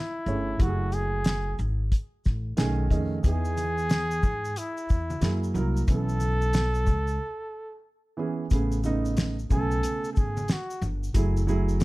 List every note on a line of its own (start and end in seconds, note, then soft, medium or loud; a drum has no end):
0.00 0.64 E4 medium
0.26 0.56 G1 medium
0.26 0.52 A3 medium
0.26 0.53 C#4 medium
0.26 0.53 G#4 medium
0.26 0.54 C#5 medium
0.26 shaker soft
0.59 1.55 F#1 loud
0.59 1.53 F#3 medium
0.59 1.54 A3 medium
0.59 1.54 E4 medium
0.59 0.96 F#4 loud
0.59 0.69 G4 medium
0.59 kick loud
0.59 closed hi-hat medium
0.68 1.58 G#4 medium
0.92 1.60 G#4 medium
0.92 closed hi-hat soft
0.92 shaker soft
1.24 snare loud
1.24 closed hi-hat medium
1.59 1.89 G#1 medium
1.59 shaker soft
1.92 kick medium
1.92 closed hi-hat medium
2.25 2.55 A1 medium
2.25 kick medium
2.25 snare soft
2.25 shaker medium
2.57 2.92 B1 medium
2.57 2.86 D#3 medium
2.57 2.86 A3 medium
2.57 2.86 C#4 medium
2.57 2.87 G#4 medium
2.57 2.89 G#5 medium
2.57 snare loud
2.57 closed hi-hat medium
2.90 3.20 F2 medium
2.90 3.16 D#3 medium
2.90 3.17 A3 medium
2.90 3.17 C#4 medium
2.90 3.17 G#4 medium
2.90 3.22 D#5 medium
2.90 kick medium
2.90 closed hi-hat soft
2.90 shaker soft
3.23 4.19 E2 loud
3.23 4.17 E3 medium
3.23 4.17 B3 medium
3.23 4.18 D#4 medium
3.23 4.18 G#4 medium
3.23 4.60 G#4 loud
3.23 kick loud
3.23 closed hi-hat medium
3.23 shaker medium
3.45 shaker soft
3.57 closed hi-hat soft
3.57 high conga soft
3.57 shaker soft
3.57 shaker medium
3.78 shaker soft
3.89 snare loud
3.89 closed hi-hat medium
3.89 shaker medium
4.11 shaker soft
4.23 4.53 G#2 medium
4.23 kick medium
4.23 low conga medium
4.23 shaker soft
4.45 shaker soft
4.56 5.56 E4 medium
4.56 closed hi-hat medium
4.56 shaker medium
4.77 shaker soft
4.89 5.19 E2 medium
4.89 kick medium
4.89 shaker soft
5.10 high conga medium
5.10 shaker soft
5.21 5.51 F#2 medium
5.21 5.50 F#3 medium
5.21 5.50 A#3 medium
5.21 5.50 E4 medium
5.21 5.51 G#4 medium
5.21 snare loud
5.21 closed hi-hat medium
5.21 shaker medium
5.44 shaker soft
5.54 5.84 C2 medium
5.54 5.80 F#3 medium
5.54 5.80 A#3 medium
5.54 5.81 E4 medium
5.54 5.81 A#4 medium
5.54 low conga medium
5.54 shaker soft
5.77 shaker soft
5.87 6.87 B1 loud
5.87 6.81 E3 medium
5.87 6.81 B3 medium
5.87 6.82 C#4 medium
5.87 6.82 A4 medium
5.87 7.83 A4 loud
5.87 kick loud
5.87 closed hi-hat loud
5.87 shaker medium
6.09 shaker soft
6.20 high conga soft
6.20 shaker soft
6.42 shaker soft
6.53 snare loud
6.53 closed hi-hat medium
6.53 low conga medium
6.53 shaker medium
6.74 shaker soft
6.87 7.17 C#2 medium
6.87 kick medium
6.87 low conga medium
6.87 shaker soft
7.07 shaker soft
8.17 8.43 E3 medium
8.17 8.44 B3 medium
8.17 8.44 C#4 medium
8.17 8.45 G#4 medium
8.50 9.46 A1 medium
8.50 8.77 C#3 medium
8.50 8.77 A3 medium
8.50 8.78 B3 medium
8.50 8.78 G#4 medium
8.50 kick loud
8.50 closed hi-hat medium
8.50 shaker medium
8.72 shaker soft
8.83 9.33 C#3 medium
8.83 9.34 A3 medium
8.83 9.34 B3 medium
8.83 9.35 D#4 medium
8.83 high conga soft
8.83 shaker soft
8.83 shaker medium
9.05 shaker soft
9.17 snare loud
9.17 closed hi-hat medium
9.17 low conga medium
9.17 shaker medium
9.39 shaker soft
9.49 9.80 B1 medium
9.49 10.43 C#3 medium
9.49 10.44 A3 medium
9.49 10.44 B3 medium
9.49 10.08 A4 loud
9.49 10.45 G#5 medium
9.49 kick medium
9.49 low conga medium
9.49 shaker soft
9.71 shaker soft
9.83 closed hi-hat medium
9.83 high conga soft
9.83 shaker medium
10.04 shaker soft
10.13 10.19 A4 medium
10.13 shaker medium
10.13 shaker soft
10.17 10.46 G#1 medium
10.17 10.54 G#4 medium
10.17 kick loud
10.37 high conga medium
10.37 shaker soft
10.48 10.84 F#4 medium
10.48 snare loud
10.48 closed hi-hat medium
10.48 shaker medium
10.70 shaker soft
10.82 11.12 G1 medium
10.82 low conga medium
10.82 shaker soft
11.04 shaker soft
11.14 11.84 F#1 loud
11.14 11.40 F#3 medium
11.14 11.41 A3 medium
11.14 11.41 E4 medium
11.14 11.42 G#4 medium
11.14 kick loud
11.14 closed hi-hat medium
11.14 shaker medium
11.37 shaker soft
11.47 11.84 F#3 medium
11.47 11.84 A3 medium
11.47 11.84 E4 medium
11.47 11.84 G#4 loud
11.47 high conga soft
11.47 shaker soft
11.69 shaker soft
11.80 closed hi-hat medium
11.80 low conga medium
11.80 shaker medium